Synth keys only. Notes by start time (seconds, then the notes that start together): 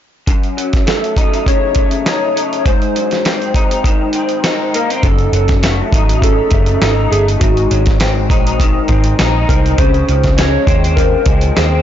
0.86 A4
1.48 C#5
2.08 C#5
2.59 C#5
2.67 C5
4.75 A#4
5.03 A4
5.64 F#4
6.23 A4
6.82 A4
7.10 G#4
7.39 F#4
9.48 A#4
9.78 C5
10.37 C#5
10.96 A#4
11.56 G#4